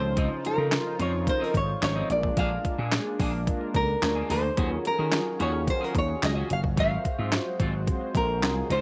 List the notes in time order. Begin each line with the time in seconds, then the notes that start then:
Already playing: C#2 C#3 F3 C#4 D#4 F4 C5
0.03 muted clean electric guitar stroke
0.17 F3 C4 D#4, kick, closed hi-hat
0.30 muted clean electric guitar stroke
0.44 A#4, muted clean electric guitar stroke, closed hi-hat
0.58 C#3 F3 C4 D#4
0.72 F3 C#4 D#4 C5, muted clean electric guitar stroke, snare, clap, closed hi-hat
0.86 muted clean electric guitar stroke
0.99 F2 F3 C4 D#4 C#5, closed hi-hat
1.13 muted clean electric guitar stroke
1.27 F3 C#4 D#4 A#4 C5, muted clean electric guitar stroke, kick, closed hi-hat
1.40 F3 C4 D#4 A#4
1.54 G#1 C#5, muted clean electric guitar stroke, kick, closed hi-hat
1.68 muted clean electric guitar stroke
1.82 G#1 F3 C#4 D#4 C5 C#5, snare, clap, closed hi-hat
1.96 F3 C4 D#4
2.09 A#1 G#3 A#3 D4 F4 A#4 D5, muted clean electric guitar stroke, closed hi-hat
2.23 muted clean electric guitar stroke, kick
2.37 A#1 A#3 D4 G#4 F5, kick, closed hi-hat
2.51 muted clean electric guitar stroke
2.65 muted clean electric guitar stroke, kick, closed hi-hat
2.78 A#2 A#3 D4 G#4
2.92 G#3 D4 F4 G#4, muted clean electric guitar stroke, snare, clap, closed hi-hat
3.06 muted clean electric guitar stroke
3.19 A#1 A#3 D4 G#4, kick, open hi-hat
3.33 muted clean electric guitar stroke
3.47 G#3 D4 F4 A#4, muted clean electric guitar stroke, kick, closed hi-hat
3.61 muted clean electric guitar stroke
3.74 C#2 A#4, kick, closed hi-hat
3.89 muted clean electric guitar stroke
4.02 D2 G#3 D4 F4 A#4, snare, clap, closed hi-hat
4.15 A#3 D4 G#4
4.29 D2 A#3 D4 G#4 C5, open hi-hat
4.43 muted clean electric guitar stroke
4.57 D#2 D#3 F#3 C#4 F4 F#4 G#4, kick, closed hi-hat
4.71 muted clean electric guitar stroke
4.75 A#4
4.85 A#4, muted clean electric guitar stroke, closed hi-hat
4.99 D#3 C#4 F#4 G#4
5.12 F#3 C#4 F4 G#4, muted clean electric guitar stroke, snare, clap, closed hi-hat
5.26 muted clean electric guitar stroke
5.39 D#2 C#4 F#4 G#4 C#5, closed hi-hat
5.54 muted clean electric guitar stroke
5.67 F#3 C#4 F4 A#4 C5, muted clean electric guitar stroke, kick, closed hi-hat
5.81 C#4 F#4 G#4 A#4
5.94 D#2 C#5, muted clean electric guitar stroke, kick, closed hi-hat
6.08 muted clean electric guitar stroke
6.22 C#2 F#3 C#4 F4 G#4 D#5, muted clean electric guitar stroke, snare, clap, closed hi-hat
6.35 C#4 F#4 G#4
6.50 F#1 F5, muted clean electric guitar stroke, closed hi-hat
6.63 muted clean electric guitar stroke, kick
6.77 G#1 F#3 G#3 C4 F4 A#4 C5 F5, kick, closed hi-hat
6.91 muted clean electric guitar stroke
7.05 muted clean electric guitar stroke, kick, closed hi-hat
7.19 G#2 F#3 C4 F4
7.32 F#3 C4 F4 C5, snare, clap, closed hi-hat
7.46 muted clean electric guitar stroke
7.60 G#1 F#3 C4 F4, kick, closed hi-hat
7.74 muted clean electric guitar stroke
7.87 F#3 C4 F4 C5, muted clean electric guitar stroke, kick, closed hi-hat
8.01 muted clean electric guitar stroke
8.15 A#1 A#4, kick, closed hi-hat
8.29 muted clean electric guitar stroke
8.42 C2 F#3 C4 F4 G#4, snare, clap, closed hi-hat
8.56 muted clean electric guitar stroke
8.70 C#2 C#3 F3 C#4 D#4 F4 C5, closed hi-hat